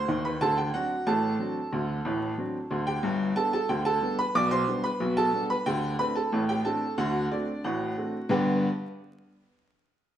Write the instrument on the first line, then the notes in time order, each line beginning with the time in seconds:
upright piano
Already playing: C5 C6
0.08 D#2 D#3
0.25 B4 B5
0.41 D2 D3 A4 A5
0.58 G4 G5
0.74 F#3 C4 D4 F#4 F#5
1.07 A1 A2 A4 A5
1.39 F#3 C4 D4
1.72 D2 D3
2.05 A1 A2
2.38 F#3 C4 D4
2.70 D2 D3
2.87 G4 G5
3.03 G1 G2
3.36 G3 B3 D4 A4 A5
3.53 A4 A5
3.69 D2 D3 G4 G5
3.85 A4 A5
4.02 G3 B3 D4
4.19 B4 B5
4.35 B1 B2 D5 D6
4.51 C5 C6
4.68 G3 B3 D4
4.84 B4 B5
5.00 B1 B2
5.17 A4 A5
5.33 G3 B3 D4
5.50 B4 B5
5.66 D2 D3 G4 G5
5.99 A3 C4 D4 B4 B5
6.15 A4 A5
6.32 A1 A2
6.49 G4 G5
6.65 A3 C4 D4 A4 A5
6.98 D2 D3 F#4 F#5
7.32 A3 C4 D4 D5
7.64 A1 A2 F#4 F#5
7.98 A3 C4 D4
8.29 G2 D3 B3 D4 G4 B4 G5